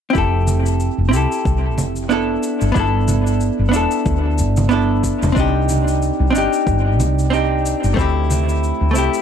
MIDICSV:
0, 0, Header, 1, 4, 480
1, 0, Start_track
1, 0, Tempo, 652174
1, 112, Time_signature, 4, 2, 24, 8
1, 6784, End_track
2, 0, Start_track
2, 0, Title_t, "Hollow-body jazz guitar"
2, 0, Program_c, 0, 26
2, 74, Note_on_c, 0, 60, 83
2, 96, Note_on_c, 0, 64, 69
2, 113, Note_on_c, 0, 67, 71
2, 130, Note_on_c, 0, 69, 92
2, 787, Note_off_c, 0, 60, 0
2, 799, Note_off_c, 0, 64, 0
2, 800, Note_on_c, 0, 60, 75
2, 807, Note_off_c, 0, 67, 0
2, 816, Note_off_c, 0, 69, 0
2, 818, Note_on_c, 0, 64, 73
2, 836, Note_on_c, 0, 67, 66
2, 855, Note_on_c, 0, 69, 79
2, 1510, Note_off_c, 0, 60, 0
2, 1520, Note_off_c, 0, 64, 0
2, 1529, Note_off_c, 0, 67, 0
2, 1538, Note_off_c, 0, 69, 0
2, 1539, Note_on_c, 0, 59, 77
2, 1542, Note_on_c, 0, 62, 71
2, 1553, Note_on_c, 0, 64, 78
2, 1563, Note_on_c, 0, 69, 96
2, 1992, Note_off_c, 0, 59, 0
2, 2001, Note_off_c, 0, 62, 0
2, 2001, Note_on_c, 0, 59, 84
2, 2007, Note_off_c, 0, 64, 0
2, 2012, Note_off_c, 0, 69, 0
2, 2018, Note_on_c, 0, 62, 79
2, 2036, Note_on_c, 0, 64, 79
2, 2055, Note_on_c, 0, 69, 95
2, 2705, Note_off_c, 0, 59, 0
2, 2714, Note_on_c, 0, 59, 77
2, 2719, Note_off_c, 0, 62, 0
2, 2729, Note_off_c, 0, 64, 0
2, 2734, Note_on_c, 0, 62, 71
2, 2738, Note_off_c, 0, 69, 0
2, 2749, Note_on_c, 0, 64, 67
2, 2768, Note_on_c, 0, 69, 83
2, 3427, Note_off_c, 0, 59, 0
2, 3437, Note_off_c, 0, 62, 0
2, 3445, Note_off_c, 0, 64, 0
2, 3451, Note_on_c, 0, 59, 89
2, 3455, Note_off_c, 0, 69, 0
2, 3462, Note_on_c, 0, 62, 77
2, 3469, Note_on_c, 0, 64, 78
2, 3479, Note_on_c, 0, 69, 93
2, 3915, Note_off_c, 0, 59, 0
2, 3918, Note_on_c, 0, 60, 82
2, 3922, Note_off_c, 0, 62, 0
2, 3925, Note_off_c, 0, 64, 0
2, 3930, Note_off_c, 0, 69, 0
2, 3937, Note_on_c, 0, 62, 81
2, 3957, Note_on_c, 0, 63, 82
2, 3972, Note_on_c, 0, 67, 99
2, 4630, Note_off_c, 0, 60, 0
2, 4639, Note_off_c, 0, 62, 0
2, 4640, Note_on_c, 0, 60, 82
2, 4649, Note_off_c, 0, 63, 0
2, 4655, Note_on_c, 0, 62, 75
2, 4656, Note_off_c, 0, 67, 0
2, 4674, Note_on_c, 0, 63, 71
2, 4695, Note_on_c, 0, 67, 92
2, 5351, Note_off_c, 0, 60, 0
2, 5358, Note_off_c, 0, 62, 0
2, 5367, Note_off_c, 0, 63, 0
2, 5374, Note_on_c, 0, 60, 83
2, 5378, Note_off_c, 0, 67, 0
2, 5383, Note_on_c, 0, 62, 79
2, 5393, Note_on_c, 0, 63, 75
2, 5402, Note_on_c, 0, 67, 91
2, 5838, Note_off_c, 0, 60, 0
2, 5842, Note_off_c, 0, 62, 0
2, 5843, Note_on_c, 0, 57, 89
2, 5847, Note_off_c, 0, 63, 0
2, 5852, Note_off_c, 0, 67, 0
2, 5857, Note_on_c, 0, 60, 80
2, 5874, Note_on_c, 0, 64, 73
2, 5892, Note_on_c, 0, 67, 101
2, 6549, Note_off_c, 0, 57, 0
2, 6557, Note_on_c, 0, 57, 79
2, 6559, Note_off_c, 0, 60, 0
2, 6568, Note_off_c, 0, 64, 0
2, 6574, Note_on_c, 0, 60, 68
2, 6577, Note_off_c, 0, 67, 0
2, 6591, Note_on_c, 0, 64, 69
2, 6611, Note_on_c, 0, 67, 93
2, 6784, Note_off_c, 0, 57, 0
2, 6784, Note_off_c, 0, 60, 0
2, 6784, Note_off_c, 0, 64, 0
2, 6784, Note_off_c, 0, 67, 0
2, 6784, End_track
3, 0, Start_track
3, 0, Title_t, "Fretless electric bass"
3, 0, Program_c, 1, 35
3, 110, Note_on_c, 1, 29, 81
3, 649, Note_off_c, 1, 29, 0
3, 721, Note_on_c, 1, 29, 73
3, 836, Note_off_c, 1, 29, 0
3, 836, Note_on_c, 1, 36, 71
3, 920, Note_off_c, 1, 36, 0
3, 1070, Note_on_c, 1, 36, 81
3, 1309, Note_off_c, 1, 36, 0
3, 1309, Note_on_c, 1, 29, 75
3, 1730, Note_off_c, 1, 29, 0
3, 1923, Note_on_c, 1, 31, 80
3, 1993, Note_off_c, 1, 31, 0
3, 2028, Note_on_c, 1, 31, 85
3, 2568, Note_off_c, 1, 31, 0
3, 2642, Note_on_c, 1, 31, 78
3, 2746, Note_off_c, 1, 31, 0
3, 2746, Note_on_c, 1, 28, 74
3, 2836, Note_off_c, 1, 28, 0
3, 2985, Note_on_c, 1, 38, 90
3, 3228, Note_on_c, 1, 31, 78
3, 3239, Note_off_c, 1, 38, 0
3, 3768, Note_off_c, 1, 31, 0
3, 3842, Note_on_c, 1, 28, 84
3, 3913, Note_off_c, 1, 28, 0
3, 3947, Note_on_c, 1, 36, 84
3, 4487, Note_off_c, 1, 36, 0
3, 4560, Note_on_c, 1, 36, 78
3, 4666, Note_off_c, 1, 36, 0
3, 4666, Note_on_c, 1, 31, 75
3, 4755, Note_off_c, 1, 31, 0
3, 4908, Note_on_c, 1, 31, 90
3, 5152, Note_off_c, 1, 31, 0
3, 5152, Note_on_c, 1, 36, 76
3, 5690, Note_off_c, 1, 36, 0
3, 5769, Note_on_c, 1, 31, 80
3, 5836, Note_off_c, 1, 31, 0
3, 5868, Note_on_c, 1, 38, 91
3, 6408, Note_off_c, 1, 38, 0
3, 6483, Note_on_c, 1, 38, 77
3, 6590, Note_off_c, 1, 38, 0
3, 6590, Note_on_c, 1, 36, 70
3, 6678, Note_off_c, 1, 36, 0
3, 6784, End_track
4, 0, Start_track
4, 0, Title_t, "Drums"
4, 110, Note_on_c, 9, 36, 90
4, 112, Note_on_c, 9, 82, 27
4, 183, Note_off_c, 9, 36, 0
4, 186, Note_off_c, 9, 82, 0
4, 348, Note_on_c, 9, 63, 55
4, 350, Note_on_c, 9, 82, 66
4, 422, Note_off_c, 9, 63, 0
4, 423, Note_off_c, 9, 82, 0
4, 486, Note_on_c, 9, 82, 38
4, 559, Note_off_c, 9, 82, 0
4, 589, Note_on_c, 9, 82, 30
4, 663, Note_off_c, 9, 82, 0
4, 834, Note_on_c, 9, 82, 70
4, 907, Note_off_c, 9, 82, 0
4, 972, Note_on_c, 9, 82, 38
4, 1045, Note_off_c, 9, 82, 0
4, 1070, Note_on_c, 9, 36, 100
4, 1076, Note_on_c, 9, 82, 26
4, 1143, Note_off_c, 9, 36, 0
4, 1149, Note_off_c, 9, 82, 0
4, 1308, Note_on_c, 9, 63, 74
4, 1313, Note_on_c, 9, 82, 66
4, 1382, Note_off_c, 9, 63, 0
4, 1386, Note_off_c, 9, 82, 0
4, 1442, Note_on_c, 9, 82, 37
4, 1515, Note_off_c, 9, 82, 0
4, 1550, Note_on_c, 9, 82, 27
4, 1623, Note_off_c, 9, 82, 0
4, 1789, Note_on_c, 9, 82, 66
4, 1863, Note_off_c, 9, 82, 0
4, 1922, Note_on_c, 9, 82, 42
4, 1996, Note_off_c, 9, 82, 0
4, 2028, Note_on_c, 9, 36, 104
4, 2029, Note_on_c, 9, 82, 30
4, 2102, Note_off_c, 9, 36, 0
4, 2103, Note_off_c, 9, 82, 0
4, 2267, Note_on_c, 9, 63, 59
4, 2267, Note_on_c, 9, 82, 73
4, 2340, Note_off_c, 9, 63, 0
4, 2341, Note_off_c, 9, 82, 0
4, 2405, Note_on_c, 9, 82, 42
4, 2479, Note_off_c, 9, 82, 0
4, 2507, Note_on_c, 9, 82, 33
4, 2580, Note_off_c, 9, 82, 0
4, 2748, Note_on_c, 9, 82, 71
4, 2821, Note_off_c, 9, 82, 0
4, 2879, Note_on_c, 9, 82, 41
4, 2953, Note_off_c, 9, 82, 0
4, 2986, Note_on_c, 9, 36, 104
4, 2987, Note_on_c, 9, 82, 31
4, 3060, Note_off_c, 9, 36, 0
4, 3060, Note_off_c, 9, 82, 0
4, 3226, Note_on_c, 9, 82, 67
4, 3299, Note_off_c, 9, 82, 0
4, 3361, Note_on_c, 9, 82, 41
4, 3367, Note_on_c, 9, 63, 78
4, 3434, Note_off_c, 9, 82, 0
4, 3440, Note_off_c, 9, 63, 0
4, 3465, Note_on_c, 9, 82, 28
4, 3538, Note_off_c, 9, 82, 0
4, 3707, Note_on_c, 9, 36, 56
4, 3710, Note_on_c, 9, 82, 74
4, 3781, Note_off_c, 9, 36, 0
4, 3783, Note_off_c, 9, 82, 0
4, 3846, Note_on_c, 9, 82, 41
4, 3851, Note_on_c, 9, 63, 90
4, 3919, Note_off_c, 9, 82, 0
4, 3924, Note_off_c, 9, 63, 0
4, 3947, Note_on_c, 9, 36, 107
4, 3949, Note_on_c, 9, 82, 31
4, 4021, Note_off_c, 9, 36, 0
4, 4022, Note_off_c, 9, 82, 0
4, 4188, Note_on_c, 9, 82, 71
4, 4195, Note_on_c, 9, 63, 58
4, 4261, Note_off_c, 9, 82, 0
4, 4269, Note_off_c, 9, 63, 0
4, 4327, Note_on_c, 9, 82, 43
4, 4401, Note_off_c, 9, 82, 0
4, 4433, Note_on_c, 9, 82, 34
4, 4506, Note_off_c, 9, 82, 0
4, 4675, Note_on_c, 9, 82, 72
4, 4749, Note_off_c, 9, 82, 0
4, 4807, Note_on_c, 9, 82, 42
4, 4881, Note_off_c, 9, 82, 0
4, 4907, Note_on_c, 9, 36, 105
4, 4910, Note_on_c, 9, 82, 32
4, 4981, Note_off_c, 9, 36, 0
4, 4984, Note_off_c, 9, 82, 0
4, 5151, Note_on_c, 9, 63, 77
4, 5153, Note_on_c, 9, 82, 68
4, 5225, Note_off_c, 9, 63, 0
4, 5226, Note_off_c, 9, 82, 0
4, 5290, Note_on_c, 9, 82, 42
4, 5364, Note_off_c, 9, 82, 0
4, 5398, Note_on_c, 9, 82, 29
4, 5471, Note_off_c, 9, 82, 0
4, 5636, Note_on_c, 9, 82, 71
4, 5710, Note_off_c, 9, 82, 0
4, 5770, Note_on_c, 9, 82, 42
4, 5843, Note_off_c, 9, 82, 0
4, 5866, Note_on_c, 9, 36, 102
4, 5879, Note_on_c, 9, 82, 29
4, 5940, Note_off_c, 9, 36, 0
4, 5952, Note_off_c, 9, 82, 0
4, 6111, Note_on_c, 9, 63, 59
4, 6114, Note_on_c, 9, 82, 76
4, 6185, Note_off_c, 9, 63, 0
4, 6188, Note_off_c, 9, 82, 0
4, 6249, Note_on_c, 9, 82, 42
4, 6323, Note_off_c, 9, 82, 0
4, 6356, Note_on_c, 9, 82, 33
4, 6430, Note_off_c, 9, 82, 0
4, 6590, Note_on_c, 9, 82, 75
4, 6664, Note_off_c, 9, 82, 0
4, 6725, Note_on_c, 9, 82, 44
4, 6784, Note_off_c, 9, 82, 0
4, 6784, End_track
0, 0, End_of_file